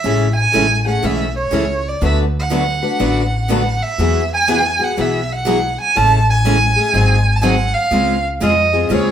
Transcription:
0.00 0.26 G#3 medium
0.00 0.33 E5 medium
0.04 0.44 A1 medium
0.04 0.26 C#3 medium
0.04 0.27 E3 medium
0.04 0.27 A3 medium
0.04 0.27 C#4 medium
0.04 0.26 E4 medium
0.04 0.27 G#4 medium
0.04 0.26 A4 medium
0.36 0.82 G#5 medium
0.53 0.96 A1 medium
0.53 0.66 C#3 medium
0.53 0.66 E3 medium
0.53 0.65 G#3 medium
0.53 0.66 A3 medium
0.53 0.66 C#4 medium
0.53 0.65 E4 medium
0.53 0.66 G#4 medium
0.53 0.65 A4 medium
0.86 1.03 A3 soft
0.86 1.02 C#4 medium
0.86 1.03 G#4 medium
0.86 1.07 F#5 medium
1.03 1.45 B1 medium
1.03 1.25 C#3 medium
1.03 1.25 E3 medium
1.03 1.25 G#3 medium
1.03 1.25 A3 medium
1.03 1.25 C#4 medium
1.03 1.25 E4 medium
1.03 1.26 G#4 medium
1.03 1.25 A4 medium
1.03 1.35 E5 medium
1.36 1.90 C#5 medium
1.51 1.94 C#2 medium
1.51 1.64 C#3 medium
1.51 1.64 E3 medium
1.51 1.63 G#3 medium
1.51 1.64 A3 medium
1.51 1.64 C#4 medium
1.51 1.64 E4 medium
1.51 1.65 G#4 medium
1.51 1.64 A4 medium
1.88 2.04 D5 medium
2.01 2.81 D2 medium
2.01 2.24 D3 medium
2.01 2.24 F#3 medium
2.01 2.24 A3 medium
2.01 2.23 B3 medium
2.01 2.24 D4 medium
2.01 2.24 F#4 medium
2.01 2.24 B4 medium
2.01 2.19 E5 medium
2.39 3.49 F#5 medium
2.50 2.62 D3 medium
2.50 2.63 F#3 medium
2.50 2.63 A3 medium
2.50 2.62 B3 medium
2.50 2.63 D4 medium
2.50 2.63 F#4 medium
2.50 2.63 B4 medium
2.82 2.99 A3 soft
2.82 2.98 D4 medium
2.82 2.99 F#4 medium
2.82 2.99 B4 medium
2.99 3.79 A1 medium
2.99 3.21 D3 medium
2.99 3.22 F#3 medium
2.99 3.22 A3 medium
2.99 3.22 B3 medium
2.99 3.22 D4 medium
2.99 3.22 F#4 medium
2.99 3.22 B4 medium
3.49 3.61 D3 medium
3.49 3.61 F#3 medium
3.49 3.62 A3 medium
3.49 3.61 B3 medium
3.49 3.61 D4 medium
3.49 3.62 F#4 loud
3.49 3.62 B4 medium
3.55 3.84 F#5 medium
3.83 4.31 E5 loud
3.98 4.77 E2 medium
3.98 4.21 E3 medium
3.98 4.21 F#3 medium
3.98 4.21 B3 medium
3.98 4.21 F#4 medium
3.98 4.21 G#4 medium
4.34 4.85 G#5 medium
4.48 4.60 E3 medium
4.48 4.60 F#3 medium
4.48 4.60 B3 medium
4.48 4.60 F#4 medium
4.48 4.60 G#4 medium
4.79 4.97 B3 soft
4.79 4.97 F#4 medium
4.79 4.96 G#4 medium
4.83 5.02 F#5 medium
4.97 5.76 B1 medium
4.97 5.19 E3 medium
4.97 5.19 F#3 medium
4.97 5.19 B3 medium
4.97 5.20 F#4 medium
4.97 5.19 G#4 medium
4.97 5.34 E5 medium
5.32 5.80 F#5 medium
5.47 5.58 E3 medium
5.47 5.58 F#3 medium
5.47 5.58 B3 medium
5.47 5.58 F#4 medium
5.47 5.58 G#4 medium
5.81 5.98 G#5 medium
5.96 6.75 A1 medium
5.96 6.17 C#3 medium
5.96 6.17 E3 medium
5.96 6.17 G#3 medium
5.96 6.18 A3 medium
5.96 6.18 C#4 medium
5.96 6.18 E4 medium
5.96 6.18 G#4 medium
5.96 6.18 A4 medium
5.96 6.28 A5 loud
6.30 7.37 G#5 loud
6.45 6.56 C#3 medium
6.45 6.56 E3 medium
6.45 6.57 G#3 medium
6.45 6.56 A3 medium
6.45 6.57 C#4 medium
6.45 6.57 E4 medium
6.45 6.56 G#4 medium
6.45 6.57 A4 medium
6.76 6.94 A3 soft
6.76 6.94 C#4 soft
6.76 6.93 G#4 medium
6.94 7.72 G#1 medium
6.94 7.15 D#3 medium
6.94 7.16 F#3 medium
6.94 7.16 C4 medium
6.94 7.16 D#4 medium
6.94 7.16 G#4 medium
7.36 7.44 A5 medium
7.42 7.54 D#3 medium
7.42 7.54 F#3 medium
7.42 7.55 C4 medium
7.42 7.54 D#4 medium
7.42 7.54 G#4 medium
7.42 7.75 F#5 medium
7.42 7.44 G#5 medium
7.74 8.23 F5 loud
7.91 8.39 C#2 medium
7.91 8.14 C#3 medium
7.91 8.14 G#3 medium
7.91 8.14 C4 medium
7.91 8.14 F4 medium
7.91 8.14 G#4 medium
8.41 8.89 F2 medium
8.41 8.53 C#3 medium
8.41 8.53 G#3 medium
8.41 8.53 C4 medium
8.41 8.53 F4 medium
8.41 8.54 G#4 medium
8.41 8.88 D#5 medium
8.73 8.90 C4 soft
8.73 8.90 F4 soft
8.73 8.90 G#4 medium
8.90 9.11 D#2 medium
8.90 9.11 C#3 medium
8.90 9.11 G#3 medium
8.90 9.11 C4 medium
8.90 9.11 F4 medium
8.90 9.11 G#4 medium
8.90 9.11 C#5 medium

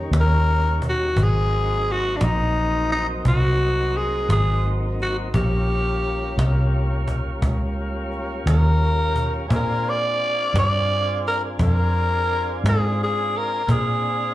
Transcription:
0.00 1.12 D#3 medium
0.00 1.12 G3 medium
0.00 1.12 A#3 medium
0.00 1.12 C#4 medium
0.11 1.13 D#2 medium
0.11 cajon slap loud
0.20 0.82 A#4 medium
0.82 cajon bass medium
0.89 1.25 F#4 medium
1.16 2.18 G#1 medium
1.16 5.30 F#3 medium
1.16 5.30 A#3 medium
1.16 5.30 C4 medium
1.16 5.30 D#4 medium
1.16 cajon bass loud
1.23 1.94 G#4 medium
1.86 cajon slap soft
1.92 2.18 F#4 medium
2.16 2.26 D4 medium
2.21 3.22 A#1 medium
2.21 2.92 D#4 medium
2.21 cajon slap loud
2.90 3.07 D#4 medium
2.90 cajon slap soft
3.25 4.26 C2 medium
3.25 3.98 F#4 medium
3.25 cajon bass loud
3.94 4.31 G#4 medium
3.94 cajon slap soft
4.29 5.30 G#1 medium
4.29 4.71 G#4 medium
4.29 cajon slap loud
4.99 5.17 F#4 medium
4.99 cajon slap soft
5.33 6.35 A#1 medium
5.33 9.47 G3 medium
5.33 9.46 A#3 medium
5.33 9.47 C#4 medium
5.33 9.47 F4 medium
5.33 6.70 G4 medium
5.33 cajon bass loud
6.03 cajon slap soft
6.38 7.39 C2 medium
6.38 cajon slap medium
7.08 cajon bass medium
7.08 cajon slap soft
7.42 8.43 C#2 medium
7.42 cajon bass loud
8.12 cajon slap soft
8.46 9.47 D#2 medium
8.46 9.48 A#4 medium
8.46 cajon slap loud
9.16 cajon bass medium
9.48 10.52 A#2 medium
9.48 13.63 C4 medium
9.48 13.63 D4 medium
9.48 13.63 F4 medium
9.48 13.63 G#4 medium
9.48 cajon bass loud
9.56 9.91 A#4 medium
9.90 10.57 D5 loud
10.20 cajon slap soft
10.54 11.56 G2 medium
10.54 cajon slap medium
10.59 11.22 D5 loud
11.25 11.43 A#4 medium
11.25 cajon slap soft
11.59 12.61 F2 medium
11.59 12.61 A#4 medium
11.59 cajon bass loud
12.29 cajon slap soft
12.64 13.65 G#2 medium
12.64 cajon slap loud
12.68 12.98 G#4 medium
13.04 13.39 G#4 medium
13.34 13.73 A#4 medium
13.34 cajon slap soft
13.67 14.34 A#2 medium
13.67 14.34 C4 medium
13.67 14.34 D4 medium
13.67 14.34 G#4 medium
13.67 14.34 F5 medium
13.67 cajon bass loud

